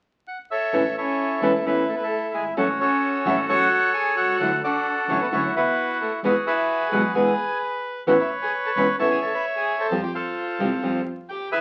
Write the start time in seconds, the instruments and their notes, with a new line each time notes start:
0.28 bandoneon F#5
0.51 bandoneon A4 C#5 E5
0.73 double bass A1, nylon-string guitar E3 A3 C#4 E4
0.96 violin C#4, bandoneon E4 A4 C#5
1.42 double bass E1, nylon-string guitar E3 A3 C#4 E4, violin B3, bandoneon B4
1.53 violin A3, bandoneon A4
1.65 double bass A1, nylon-string guitar E3 A3 C#4 E4, violin B3, bandoneon E4 B4
1.87 violin A3, bandoneon A4
1.95 violin B3, bandoneon B4
2.01 violin A3, bandoneon A4
2.34 double bass G1, violin G#3, bandoneon G#4
2.57 double bass A1, nylon-string guitar F#3 A3 C#4 F#4, violin A3, bandoneon C#4 F#4 A4
2.80 violin C#4, bandoneon F#4 A4 C#5
3.25 double bass A1, nylon-string guitar F#3 A3 C#4 F#4, violin E4, bandoneon E5
3.49 double bass A1, nylon-string guitar F#3 A3 C#4 F#4, violin F#4, bandoneon A4 C#5 F#5
3.94 violin G#4, bandoneon G#5
4.17 double bass C2, violin F#4, bandoneon A4 F#5
4.40 double bass D2, nylon-string guitar D3 F#3 A3 E4 F#4
4.64 violin D4, bandoneon F#4 A4 D5
5.08 double bass A1, nylon-string guitar D3 F#3 A3 E4 F#4, violin C#4, bandoneon C#5
5.21 violin B3, bandoneon B4
5.32 double bass D2, nylon-string guitar D3 F#3 A3 E4 F#4, violin C#4, bandoneon E4 F#4 C#5
5.56 violin B3, bandoneon E4 F#4 B4
6.01 violin A3, bandoneon A4
6.23 double bass E2, nylon-string guitar B2 E3 G#3 B3 F#4, violin B3, bandoneon F#4 G#4 B4
6.47 violin E4, bandoneon G#4 B4 E5
6.86 violin G#4, bandoneon G#5
6.92 double bass B1, nylon-string guitar B2 E3 G#3 B3 F#4, violin F#4, bandoneon F#5
7.14 double bass E2, nylon-string guitar B2 E3 G#3 B3 F#4, violin G#4, bandoneon B4 G#5
8.07 double bass A1, nylon-string guitar E3 B3 C#4 E4, violin F#4, bandoneon B4 C#5 F#5
8.19 violin E4, bandoneon E5
8.42 violin G#4, bandoneon G#5
8.65 violin A4, bandoneon A5
8.77 double bass E1, nylon-string guitar E3 B3 C#4 E4, violin B4, bandoneon B5
8.99 double bass A1, nylon-string guitar E3 B3 C#4 E4, violin A4, bandoneon C#5 E5 A5
9.10 violin G#4, bandoneon G#5
9.22 violin A4, bandoneon A5
9.34 violin B4, bandoneon B5
9.56 violin G#4, bandoneon G#5
9.80 violin A4, bandoneon C5 A5
9.91 double bass F2, nylon-string guitar F3 G3 C4 F4
10.03 violin G4, bandoneon G5
10.15 violin F4, bandoneon A4 C5 F5
10.59 double bass C2, nylon-string guitar F3 G3 C4 F4
10.82 double bass F2, nylon-string guitar F3 G3 C4 F4
11.29 violin G4, bandoneon G5
11.51 double bass D2, violin E4, bandoneon G#4 B4 E5